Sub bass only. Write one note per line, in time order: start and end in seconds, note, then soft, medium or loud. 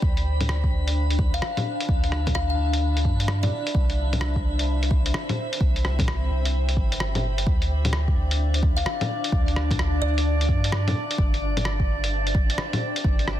0.02 0.71 D2 loud
0.72 1.41 D2 medium
1.89 2.57 D2 loud
2.58 3.07 D2 medium
3.05 3.50 G2 medium
3.75 4.43 C2 loud
4.45 5.13 C2 medium
5.60 6.29 C2 loud
6.30 6.78 C2 medium
6.77 7.45 G1 medium
7.47 8.15 D2 loud
8.17 8.85 D2 medium
9.32 10.01 D2 loud
10.02 10.50 D2 medium
10.49 10.94 G2 medium
11.19 11.87 G1 loud
11.88 12.57 G1 medium
13.04 13.40 G1 loud